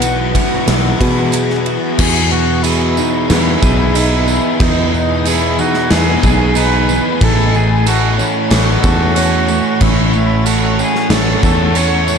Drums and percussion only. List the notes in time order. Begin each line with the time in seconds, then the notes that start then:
0.02 ride, tambourine
0.35 kick, ride
0.68 snare, ride
1.01 kick, ride
1.32 ride, tambourine
1.50 snare
1.66 ride
1.98 kick, crash, tambourine
2.31 tambourine
2.64 tambourine, crash
2.97 tambourine
3.30 snare, tambourine, crash
3.62 kick, tambourine
3.95 tambourine, crash
4.28 tambourine
4.60 kick, tambourine, crash
4.94 tambourine
5.25 tambourine, crash
5.59 tambourine
5.74 snare
5.90 snare, tambourine, crash
6.23 kick, tambourine
6.55 tambourine, crash
6.89 tambourine
7.21 kick, tambourine, crash
7.54 tambourine
7.86 tambourine, crash
8.19 tambourine
8.50 snare, tambourine, crash
8.83 kick, tambourine
9.16 tambourine, crash
9.48 tambourine
9.81 kick, tambourine, crash
10.13 tambourine
10.46 tambourine, crash
10.79 tambourine
10.95 snare
11.10 snare, tambourine, crash
11.43 kick, tambourine
11.75 tambourine, crash
12.08 tambourine